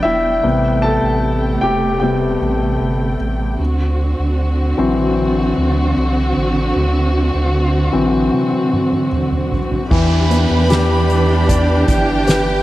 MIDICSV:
0, 0, Header, 1, 7, 480
1, 0, Start_track
1, 0, Key_signature, 1, "minor"
1, 0, Tempo, 789474
1, 266, Time_signature, 4, 2, 24, 8
1, 7678, End_track
2, 0, Start_track
2, 0, Title_t, "Violin section"
2, 0, Program_c, 0, 48
2, 6027, Note_on_c, 0, 71, 64
2, 6027, Note_on_c, 0, 83, 77
2, 7203, Note_off_c, 0, 71, 0
2, 7203, Note_off_c, 0, 83, 0
2, 7230, Note_on_c, 0, 67, 77
2, 7230, Note_on_c, 0, 79, 80
2, 7678, Note_off_c, 0, 67, 0
2, 7678, Note_off_c, 0, 79, 0
2, 7678, End_track
3, 0, Start_track
3, 0, Title_t, "Grand piano"
3, 0, Program_c, 1, 0
3, 0, Control_c, 1, 64, 127
3, 0, Note_on_c, 1, 59, 51
3, 0, Note_on_c, 1, 62, 55
3, 0, Note_on_c, 1, 71, 67
3, 0, Note_on_c, 1, 74, 67
3, 16, Note_on_c, 1, 76, 85
3, 29, Note_on_c, 1, 64, 63
3, 262, Note_on_c, 1, 48, 43
3, 263, Note_on_c, 1, 55, 37
3, 267, Note_off_c, 1, 59, 0
3, 267, Note_on_c, 1, 59, 49
3, 273, Control_c, 1, 64, 0
3, 274, Note_off_c, 1, 71, 0
3, 274, Note_off_c, 1, 74, 0
3, 275, Note_off_c, 1, 62, 0
3, 366, Control_c, 1, 64, 127
3, 477, Note_off_c, 1, 76, 0
3, 483, Note_off_c, 1, 64, 0
3, 500, Note_on_c, 1, 81, 84
3, 512, Note_on_c, 1, 69, 64
3, 583, Note_off_c, 1, 48, 0
3, 584, Note_off_c, 1, 55, 0
3, 586, Note_off_c, 1, 59, 0
3, 959, Note_off_c, 1, 81, 0
3, 965, Note_off_c, 1, 69, 0
3, 980, Note_on_c, 1, 79, 76
3, 993, Note_on_c, 1, 67, 61
3, 1205, Note_off_c, 1, 79, 0
3, 1213, Note_off_c, 1, 67, 0
3, 1214, Note_on_c, 1, 79, 63
3, 1223, Note_on_c, 1, 48, 35
3, 1224, Note_on_c, 1, 55, 30
3, 1227, Note_on_c, 1, 59, 37
3, 1230, Note_on_c, 1, 67, 48
3, 1440, Note_off_c, 1, 48, 0
3, 1441, Note_off_c, 1, 55, 0
3, 1443, Note_off_c, 1, 59, 0
3, 1916, Note_off_c, 1, 79, 0
3, 1924, Note_off_c, 1, 67, 0
3, 2194, Control_c, 1, 64, 0
3, 2286, Control_c, 1, 64, 127
3, 2904, Note_on_c, 1, 52, 46
3, 2906, Note_on_c, 1, 54, 41
3, 2911, Note_on_c, 1, 60, 55
3, 3601, Note_off_c, 1, 52, 0
3, 3602, Note_off_c, 1, 54, 0
3, 3604, Note_off_c, 1, 60, 0
3, 4818, Note_on_c, 1, 52, 43
3, 4820, Note_on_c, 1, 54, 41
3, 4823, Note_on_c, 1, 60, 51
3, 5518, Note_off_c, 1, 52, 0
3, 5519, Note_off_c, 1, 54, 0
3, 5521, Note_off_c, 1, 60, 0
3, 6023, Note_on_c, 1, 52, 62
3, 6034, Control_c, 1, 64, 0
3, 6139, Control_c, 1, 64, 127
3, 6266, Note_on_c, 1, 59, 52
3, 6507, Note_on_c, 1, 67, 61
3, 6984, Note_on_c, 1, 74, 56
3, 7202, Note_off_c, 1, 59, 0
3, 7443, Note_off_c, 1, 67, 0
3, 7462, Note_on_c, 1, 71, 50
3, 7678, Note_off_c, 1, 52, 0
3, 7678, Note_off_c, 1, 71, 0
3, 7678, Note_off_c, 1, 74, 0
3, 7678, End_track
4, 0, Start_track
4, 0, Title_t, "String section"
4, 0, Program_c, 2, 48
4, 0, Note_on_c, 2, 54, 57
4, 0, Note_on_c, 2, 59, 55
4, 0, Note_on_c, 2, 79, 70
4, 250, Note_off_c, 2, 54, 0
4, 250, Note_off_c, 2, 59, 0
4, 270, Note_on_c, 2, 48, 57
4, 270, Note_on_c, 2, 57, 58
4, 2164, Note_off_c, 2, 79, 0
4, 2169, Note_off_c, 2, 48, 0
4, 2169, Note_off_c, 2, 57, 0
4, 2179, Note_on_c, 2, 50, 67
4, 2180, Note_on_c, 2, 60, 59
4, 2180, Note_on_c, 2, 66, 71
4, 5998, Note_off_c, 2, 50, 0
4, 5999, Note_off_c, 2, 60, 0
4, 5999, Note_off_c, 2, 66, 0
4, 6023, Note_on_c, 2, 67, 87
4, 6024, Note_on_c, 2, 52, 74
4, 6025, Note_on_c, 2, 62, 70
4, 7678, Note_off_c, 2, 52, 0
4, 7678, Note_off_c, 2, 62, 0
4, 7678, Note_off_c, 2, 67, 0
4, 7678, End_track
5, 0, Start_track
5, 0, Title_t, "Sub bass"
5, 0, Program_c, 3, 38
5, 28, Note_on_c, 3, 28, 70
5, 250, Note_off_c, 3, 28, 0
5, 267, Note_on_c, 3, 33, 92
5, 602, Note_off_c, 3, 33, 0
5, 627, Note_on_c, 3, 33, 89
5, 962, Note_off_c, 3, 33, 0
5, 988, Note_on_c, 3, 28, 71
5, 1443, Note_off_c, 3, 28, 0
5, 1468, Note_on_c, 3, 33, 97
5, 1690, Note_off_c, 3, 33, 0
5, 1706, Note_on_c, 3, 31, 80
5, 1929, Note_off_c, 3, 31, 0
5, 1947, Note_on_c, 3, 33, 83
5, 2170, Note_off_c, 3, 33, 0
5, 2187, Note_on_c, 3, 38, 93
5, 2522, Note_off_c, 3, 38, 0
5, 2549, Note_on_c, 3, 38, 85
5, 2883, Note_off_c, 3, 38, 0
5, 2910, Note_on_c, 3, 33, 74
5, 3364, Note_off_c, 3, 33, 0
5, 3391, Note_on_c, 3, 38, 98
5, 3612, Note_off_c, 3, 38, 0
5, 3631, Note_on_c, 3, 36, 93
5, 3852, Note_off_c, 3, 36, 0
5, 3872, Note_on_c, 3, 33, 92
5, 4092, Note_off_c, 3, 33, 0
5, 4109, Note_on_c, 3, 38, 101
5, 4443, Note_off_c, 3, 38, 0
5, 4468, Note_on_c, 3, 38, 88
5, 4803, Note_off_c, 3, 38, 0
5, 4827, Note_on_c, 3, 33, 76
5, 5050, Note_off_c, 3, 33, 0
5, 6029, Note_on_c, 3, 40, 99
5, 6363, Note_off_c, 3, 40, 0
5, 6388, Note_on_c, 3, 40, 101
5, 7203, Note_off_c, 3, 40, 0
5, 7224, Note_on_c, 3, 31, 83
5, 7678, Note_off_c, 3, 31, 0
5, 7678, End_track
6, 0, Start_track
6, 0, Title_t, "Downlifter"
6, 0, Program_c, 4, 103
6, 6028, Note_on_c, 4, 60, 74
6, 7678, Note_off_c, 4, 60, 0
6, 7678, End_track
7, 0, Start_track
7, 0, Title_t, "Drums"
7, 5068, Note_on_c, 9, 48, 44
7, 5129, Note_off_c, 9, 48, 0
7, 5188, Note_on_c, 9, 48, 44
7, 5249, Note_off_c, 9, 48, 0
7, 5310, Note_on_c, 9, 47, 58
7, 5371, Note_off_c, 9, 47, 0
7, 5428, Note_on_c, 9, 47, 55
7, 5489, Note_off_c, 9, 47, 0
7, 5547, Note_on_c, 9, 45, 63
7, 5608, Note_off_c, 9, 45, 0
7, 5667, Note_on_c, 9, 45, 66
7, 5728, Note_off_c, 9, 45, 0
7, 5788, Note_on_c, 9, 43, 77
7, 5849, Note_off_c, 9, 43, 0
7, 5907, Note_on_c, 9, 43, 69
7, 5968, Note_off_c, 9, 43, 0
7, 6025, Note_on_c, 9, 49, 88
7, 6027, Note_on_c, 9, 36, 101
7, 6086, Note_off_c, 9, 49, 0
7, 6087, Note_off_c, 9, 36, 0
7, 6268, Note_on_c, 9, 42, 68
7, 6329, Note_off_c, 9, 42, 0
7, 6505, Note_on_c, 9, 42, 88
7, 6517, Note_on_c, 9, 38, 111
7, 6566, Note_off_c, 9, 42, 0
7, 6578, Note_off_c, 9, 38, 0
7, 6747, Note_on_c, 9, 42, 69
7, 6807, Note_off_c, 9, 42, 0
7, 6987, Note_on_c, 9, 36, 89
7, 6988, Note_on_c, 9, 42, 89
7, 7048, Note_off_c, 9, 36, 0
7, 7048, Note_off_c, 9, 42, 0
7, 7223, Note_on_c, 9, 42, 79
7, 7225, Note_on_c, 9, 36, 94
7, 7284, Note_off_c, 9, 42, 0
7, 7286, Note_off_c, 9, 36, 0
7, 7462, Note_on_c, 9, 42, 91
7, 7473, Note_on_c, 9, 38, 100
7, 7523, Note_off_c, 9, 42, 0
7, 7533, Note_off_c, 9, 38, 0
7, 7678, End_track
0, 0, End_of_file